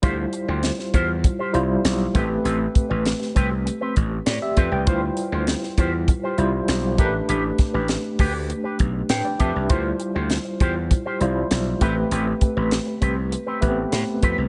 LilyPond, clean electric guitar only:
\new Staff \with { instrumentName = "Clean electric guitar" } { \time 4/4 \key d \dorian \tempo 4 = 99 <f' g' c''>16 r8 <f' g' c''>16 r8 <f' g' c''>16 r8 <f' g' c''>16 r4 <c' g' b'>16 r16 | <c' g' b'>16 r8 <c' g' b'>16 r8 <c' g' b'>16 r8 <c' g' b'>16 r4 <c' g' b'>16 r16 | <f' g' c''>16 r8 <f' g' c''>16 r8 <f' g' c''>16 r8 <f' g' c''>16 r4 <d' g' b'>16 r16 | <d' g' b'>16 r8 <d' g' b'>16 r8 <d' g' b'>16 r8 <d' g' b'>16 r4 <d' g' b'>16 r16 |
<f' g' c''>16 r8 <f' g' c''>16 r8 <f' g' c''>16 r8 <f' g' c''>16 r4 <c' g' b'>16 r16 | <c' g' b'>16 r8 <c' g' b'>16 r8 <c' g' b'>16 r8 <c' g' b'>16 r4 <c' g' b'>16 r16 | }